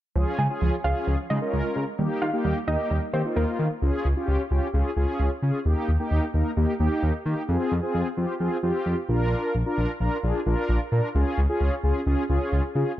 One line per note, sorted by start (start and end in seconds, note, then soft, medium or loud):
0.16 0.24 C#2 loud
0.16 0.31 F3 medium
0.16 0.41 C#4 medium
0.16 0.41 F4 medium
0.16 0.41 G#4 medium
0.38 0.47 C#3 loud
0.38 0.54 G#3 medium
0.38 0.45 G#5 medium
0.50 0.75 C#4 medium
0.50 0.75 F4 medium
0.50 0.75 G#4 medium
0.61 0.70 C#2 loud
0.61 0.77 F3 medium
0.84 0.93 C#2 medium
0.84 0.99 C#4 medium
0.84 1.18 C#4 medium
0.84 1.18 F4 medium
0.84 1.18 G#4 medium
0.84 0.97 F5 medium
1.07 1.16 C#2 loud
1.07 1.22 F3 medium
1.30 1.39 C#3 loud
1.30 1.45 G#3 medium
1.30 1.39 C#4 medium
1.30 1.39 F4 medium
1.30 1.39 G#4 medium
1.30 1.62 D#5 medium
1.41 1.84 C#4 medium
1.41 1.84 F4 medium
1.41 1.84 A#4 medium
1.53 1.62 C#2 loud
1.53 1.68 G#3 medium
1.76 1.85 C#3 loud
1.76 1.91 G#3 medium
1.99 2.08 D#2 loud
1.99 2.14 G3 medium
1.99 2.24 A#3 medium
1.99 2.24 D#4 medium
1.99 2.24 G4 medium
2.22 2.30 D#3 medium
2.22 2.37 A#3 medium
2.22 2.28 F5 medium
2.33 2.58 A#3 medium
2.33 2.58 D#4 medium
2.33 2.58 G4 loud
2.45 2.53 D#2 loud
2.45 2.60 G3 medium
2.67 2.76 D#2 loud
2.67 3.01 A#3 medium
2.67 2.83 D#4 medium
2.67 3.01 D#4 medium
2.67 3.01 G4 medium
2.67 2.81 D#5 medium
2.90 2.99 D#2 loud
2.90 3.06 G3 medium
3.13 3.22 D#3 loud
3.13 3.29 A#3 medium
3.13 3.22 A#3 medium
3.13 3.22 D#4 medium
3.13 3.22 G4 loud
3.13 3.26 C5 medium
3.25 3.67 A#3 medium
3.25 3.67 D#4 medium
3.25 3.67 F4 medium
3.36 3.45 D#2 loud
3.36 3.51 A#3 medium
3.36 3.69 A#4 medium
3.59 3.68 D#3 medium
3.59 3.74 A#3 medium
3.82 3.91 C#2 loud
3.82 4.07 C#4 medium
3.82 4.07 F4 medium
3.82 4.07 G#4 medium
4.05 4.14 C#2 loud
4.17 4.42 C#4 medium
4.17 4.42 F4 medium
4.17 4.42 G4 medium
4.28 4.37 C#2 medium
4.51 4.60 C#2 medium
4.51 4.68 C#4 medium
4.51 4.68 F4 medium
4.51 4.68 G4 medium
4.74 4.82 C#2 loud
4.74 4.91 C#4 medium
4.74 4.91 F4 medium
4.74 4.91 G#4 medium
4.97 5.05 C#2 medium
4.97 5.30 C#4 medium
4.97 5.30 F4 medium
4.97 5.30 G#4 medium
5.20 5.28 C#2 loud
5.42 5.51 C#3 medium
5.42 5.59 C#4 medium
5.42 5.59 F4 medium
5.42 5.59 G#4 medium
5.65 5.74 D#2 loud
5.65 5.91 A#3 medium
5.65 5.91 D#4 medium
5.65 5.90 G4 loud
5.88 5.97 D#2 medium
6.00 6.25 A#3 medium
6.00 6.25 D#4 medium
6.00 6.25 G4 loud
6.11 6.20 D#2 medium
6.34 6.43 D#2 medium
6.34 6.51 A#3 medium
6.34 6.51 D#4 medium
6.34 6.51 A#4 medium
6.57 6.66 D#2 loud
6.57 6.74 A#3 medium
6.57 6.74 D#4 medium
6.57 6.74 G4 medium
6.80 6.88 D#2 loud
6.80 7.13 A#3 medium
6.80 7.13 D#4 medium
6.80 7.13 G4 loud
7.03 7.11 D#2 loud
7.26 7.34 D#3 medium
7.26 7.42 A#3 medium
7.26 7.42 D#4 medium
7.26 7.42 G4 medium
7.48 7.57 F2 loud
7.48 7.74 C4 medium
7.48 7.74 F4 medium
7.48 7.74 G#4 medium
7.71 7.80 F2 loud
7.83 8.08 C4 medium
7.83 8.08 F4 medium
7.83 8.08 G#4 medium
7.94 8.03 F2 loud
8.17 8.26 F2 medium
8.17 8.34 C4 medium
8.17 8.34 F4 medium
8.17 8.34 G4 medium
8.40 8.49 F2 loud
8.40 8.57 C4 medium
8.40 8.57 F4 medium
8.40 8.57 G#4 medium
8.63 8.72 F2 medium
8.63 8.97 C4 medium
8.63 8.97 F4 medium
8.63 8.97 G4 medium
8.86 8.95 F2 loud
9.09 9.35 A#1 loud
9.09 9.55 D4 medium
9.09 9.55 F4 medium
9.09 9.55 A#4 medium
9.55 9.63 A#1 medium
9.66 9.91 D4 medium
9.66 9.91 F4 medium
9.66 9.91 A#4 loud
9.78 9.86 A#1 medium
10.00 10.09 A#1 loud
10.00 10.17 D4 medium
10.00 10.17 F4 medium
10.00 10.17 A#4 medium
10.23 10.32 A#1 loud
10.23 10.40 D4 medium
10.23 10.40 F4 medium
10.23 10.40 G#4 medium
10.46 10.55 A#1 loud
10.46 10.80 D4 medium
10.46 10.80 F4 medium
10.46 10.80 A#4 loud
10.69 10.78 A#1 loud
10.92 11.01 A#2 medium
10.92 11.09 D4 medium
10.92 11.09 F4 medium
10.92 11.09 A#4 medium
11.15 11.24 C#2 loud
11.15 11.40 C#4 medium
11.15 11.40 F4 medium
11.15 11.40 G#4 loud
11.38 11.46 C#2 loud
11.49 11.75 C#4 medium
11.49 11.75 F4 medium
11.49 11.75 G#4 loud
11.61 11.69 C#2 loud
11.83 11.92 C#2 medium
11.83 12.00 C#4 medium
11.83 12.00 F4 medium
11.83 12.00 G#4 medium
12.06 12.15 C#2 loud
12.06 12.23 C#4 medium
12.06 12.23 F4 medium
12.06 12.23 G#4 loud
12.29 12.38 C#2 loud
12.29 12.63 C#4 medium
12.29 12.63 F4 medium
12.29 12.63 G#4 medium
12.52 12.61 C#2 loud
12.75 12.84 C#3 medium
12.75 12.92 C#4 medium
12.75 12.92 F4 medium
12.75 12.92 G#4 medium